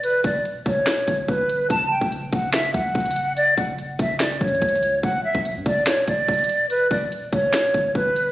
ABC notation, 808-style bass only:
X:1
M:4/4
L:1/16
Q:1/4=144
K:Edor
V:1 name="808-style bass" clef=bass
E,,,2 E,,,4 E,,,4 G,,,2 G,,,4 | F,,,3 F,,,3 F,,,4 C,,2 F,,,4- | F,,,2 F,,,4 F,,,4 F,,2 C,,4 | E,,,3 B,,,2 G,, E,,,4 E,,,2 E,,,4- |
E,,,2 E,,,4 E,,,4 G,,,2 G,,,4 |]